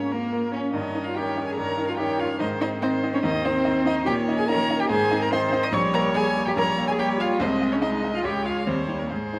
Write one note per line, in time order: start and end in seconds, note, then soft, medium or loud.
0.00 0.76 G#2 medium
0.00 0.12 A#3 medium
0.00 0.13 C#4 loud
0.00 0.12 F4 medium
0.00 0.12 A#4 medium
0.00 0.13 C#5 medium
0.11 0.52 A#3 medium
0.11 0.30 A#3 medium
0.11 0.31 F4 medium
0.11 0.53 A#4 medium
0.11 0.31 A#4 medium
0.32 0.51 A#3 medium
0.32 0.51 F4 medium
0.32 0.51 A#4 medium
0.52 0.72 A#3 medium
0.52 0.60 C#4 medium
0.52 0.76 C#4 medium
0.52 0.74 C#4 medium
0.52 0.72 F4 soft
0.52 0.72 A#4 medium
0.52 0.72 C#5 medium
0.73 0.94 G2 medium
0.73 1.13 D#3 medium
0.73 1.05 D#4 loud
0.73 1.13 C#5 medium
0.73 1.05 D#5 medium
0.94 1.13 C#4 medium
0.94 1.13 D#4 medium
0.94 1.14 A#4 medium
1.04 1.18 F4 medium
1.04 1.16 F5 medium
1.14 1.56 D#3 medium
1.14 1.35 C#4 medium
1.14 1.35 D#4 medium
1.14 1.47 G4 medium
1.14 1.35 A#4 medium
1.14 1.57 C#5 medium
1.14 1.45 G5 medium
1.37 1.55 C#4 medium
1.37 1.56 D#4 medium
1.37 1.56 A#4 medium
1.46 1.59 G#4 loud
1.46 1.55 G#5 medium
1.56 1.78 G2 medium
1.56 1.98 D#3 medium
1.56 1.91 A#4 loud
1.56 1.98 C#5 medium
1.56 1.87 A#5 loud
1.78 1.96 C#4 medium
1.78 1.97 D#4 medium
1.78 1.97 A#4 medium
1.87 1.99 F4 loud
1.87 1.97 F5 medium
1.98 2.39 D#3 medium
1.98 2.17 C#4 medium
1.98 2.18 D#4 medium
1.98 2.19 G4 loud
1.98 2.18 A#4 medium
1.98 2.40 C#5 medium
1.98 2.21 G5 medium
2.19 2.38 C#4 medium
2.19 2.38 D#4 medium
2.19 2.27 F4 loud
2.19 2.38 A#4 medium
2.19 2.39 F5 medium
2.39 2.60 G#2 medium
2.39 2.81 D#3 medium
2.39 2.47 D#4 loud
2.39 2.81 C5 medium
2.39 2.48 D#5 loud
2.60 2.80 C4 medium
2.60 2.68 D#4 loud
2.60 2.80 D#4 medium
2.60 2.69 D#5 loud
2.60 2.80 D#5 medium
2.81 3.23 D#3 medium
2.81 2.89 C4 loud
2.81 3.01 C4 medium
2.81 3.01 D#4 medium
2.81 3.22 C5 medium
2.81 2.90 C5 loud
2.81 3.01 D#5 medium
3.03 3.22 C4 medium
3.03 3.22 D#4 medium
3.03 3.22 D#5 medium
3.14 3.18 C#4 loud
3.14 3.23 C#5 medium
3.23 3.44 D#2 medium
3.23 4.05 D#3 medium
3.23 3.31 D#4 loud
3.23 4.08 C5 medium
3.23 3.47 D#5 loud
3.43 3.87 C4 loud
3.43 3.63 C4 medium
3.43 3.63 D#4 medium
3.43 3.86 C5 loud
3.43 3.64 D#5 medium
3.65 3.84 C4 medium
3.65 3.84 D#4 medium
3.65 3.84 D#5 medium
3.85 4.05 C4 medium
3.85 4.05 D#4 loud
3.85 4.05 D#4 medium
3.85 3.94 D#5 loud
3.85 4.05 D#5 medium
4.05 4.27 A#2 loud
4.05 4.47 D#3 medium
4.05 4.13 G4 loud
4.05 4.47 C#5 loud
4.05 4.14 G5 loud
4.28 4.47 C#4 medium
4.28 4.47 D#4 medium
4.28 4.47 D#5 medium
4.37 4.48 G#4 loud
4.37 4.49 G#5 loud
4.48 4.89 D#3 medium
4.48 4.67 C#4 medium
4.48 4.67 D#4 medium
4.48 4.79 A#4 loud
4.48 4.89 C#5 loud
4.48 4.68 D#5 medium
4.48 4.81 A#5 loud
4.69 4.88 C#4 medium
4.69 4.88 D#4 medium
4.69 4.89 D#5 medium
4.79 4.90 G4 loud
4.79 4.90 G5 loud
4.89 5.10 G#2 loud
4.89 5.30 D#3 medium
4.89 5.20 G#4 loud
4.89 5.30 C5 loud
4.89 5.23 G#5 loud
5.11 5.30 C4 medium
5.11 5.30 D#4 medium
5.11 5.30 D#5 medium
5.21 5.32 A#4 loud
5.21 5.32 A#5 loud
5.31 5.72 D#3 loud
5.31 5.50 C4 medium
5.31 5.51 D#4 medium
5.31 5.74 C5 loud
5.31 5.66 C5 loud
5.31 5.51 D#5 medium
5.31 5.40 C6 loud
5.52 5.71 C4 medium
5.52 5.71 D#4 medium
5.52 5.71 D#5 medium
5.63 5.75 D#5 loud
5.63 5.67 D#6 loud
5.72 5.93 A#1 loud
5.72 6.55 G3 loud
5.72 6.56 C#5 loud
5.72 5.96 C#5 loud
5.72 5.81 C#6 loud
5.94 6.13 A#3 medium
5.94 6.13 G4 medium
5.94 6.15 A#4 loud
5.94 6.13 C#5 medium
5.94 6.02 A#5 loud
6.14 6.33 A#3 medium
6.14 6.34 G4 medium
6.14 6.24 G#4 loud
6.14 6.34 C#5 medium
6.14 6.47 G#5 loud
6.37 6.55 A#3 medium
6.37 6.55 G4 medium
6.37 6.56 C#5 medium
6.46 6.51 G4 loud
6.46 6.56 G5 loud
6.56 6.77 A#1 medium
6.56 6.97 G3 medium
6.56 6.65 A#4 loud
6.56 6.97 C#5 loud
6.56 6.87 A#5 loud
6.78 6.97 A#3 medium
6.78 6.97 G4 medium
6.78 6.97 C#5 medium
6.88 7.00 G#4 loud
6.88 6.92 G#5 loud
6.97 7.42 G3 loud
6.97 7.17 A#3 medium
6.97 7.17 G4 medium
6.97 7.19 G4 loud
6.97 7.39 C#5 medium
6.97 7.18 C#5 medium
6.97 7.07 G5 loud
7.19 7.38 A#3 medium
7.19 7.42 F4 loud
7.19 7.38 G4 medium
7.19 7.38 C#5 medium
7.19 7.28 F5 loud
7.40 7.61 C2 loud
7.40 7.82 G#3 medium
7.40 7.75 C4 loud
7.40 7.49 C5 loud
7.40 7.81 D#5 medium
7.61 7.80 G#3 medium
7.61 7.80 G#4 medium
7.61 7.80 D#5 medium
7.72 7.84 C#4 loud
7.72 7.76 C#5 medium
7.81 8.01 G#3 medium
7.81 8.24 G#3 medium
7.81 8.14 D#4 loud
7.81 8.01 G#4 medium
7.81 8.25 D#5 medium
7.81 7.90 D#5 loud
7.81 8.01 D#5 medium
8.03 8.22 G#3 medium
8.03 8.23 G#4 medium
8.03 8.23 D#5 medium
8.14 8.26 F4 loud
8.14 8.23 F5 medium
8.24 8.45 C#2 medium
8.24 8.68 G#3 medium
8.24 8.45 G4 loud
8.24 8.67 C#5 medium
8.24 8.47 G5 loud
8.45 8.64 G#3 medium
8.45 8.65 F4 loud
8.45 8.65 G#4 medium
8.45 8.65 C#5 medium
8.45 8.69 F5 medium
8.66 8.88 D#2 medium
8.66 9.12 G3 medium
8.66 8.74 C4 loud
8.66 9.00 C5 loud
8.66 9.11 C#5 medium
8.87 9.07 G3 medium
8.87 9.08 D#4 medium
8.87 9.08 C#5 medium
8.98 9.04 A#3 medium
8.98 9.09 A#4 medium
9.09 9.32 G#2 medium
9.09 9.39 G#3 medium
9.09 9.39 G#4 medium
9.09 9.39 C5 medium
9.33 9.39 G#3 medium
9.33 9.39 D#4 soft
9.33 9.39 C5 medium